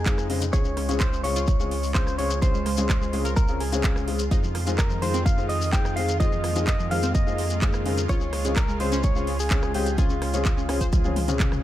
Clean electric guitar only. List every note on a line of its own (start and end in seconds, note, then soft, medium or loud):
0.00 0.26 G#4 medium
0.53 0.97 C#5 loud
1.00 1.23 C5 loud
1.24 1.91 C#5 loud
1.94 2.17 C5 loud
2.18 2.41 C#5 loud
2.42 3.36 C5 loud
3.36 3.61 A#4 medium
3.60 4.04 G#4 medium
4.78 5.03 A#4 medium
5.02 5.25 C5 medium
5.26 5.48 F5 loud
5.49 5.72 D#5 loud
5.73 5.95 G5 loud
5.96 6.19 F5 loud
6.20 6.64 D#5 loud
6.67 6.91 D#5 loud
6.91 7.14 F5 loud
7.15 7.59 D#5 medium
8.09 8.56 C#5 loud
8.57 8.80 A#4 loud
8.80 9.04 C5 loud
9.04 9.37 C#5 loud
9.40 9.75 G#4 loud
9.75 9.98 G4 medium
9.99 11.36 F4 medium